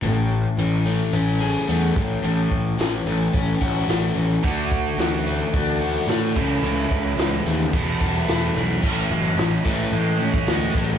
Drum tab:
CC |----------------|----------------|----------------|----------------|
HH |x-x-x-x-x-x-x-x-|x-x-x-x-x-x-x-x-|x-x-x-x-x-x-x-x-|x-x-x-x-x-x-x-x-|
SD |----------------|----o-------o---|----o-------o---|----o-------o-o-|
BD |--------------o-|--o-----o-o-----|o-o-----o-----o-|--o-----o-o-----|

CC |x---------------|
HH |--x-x-xxx-xxx-xx|
SD |----o-------o---|
BD |o-----o----o--o-|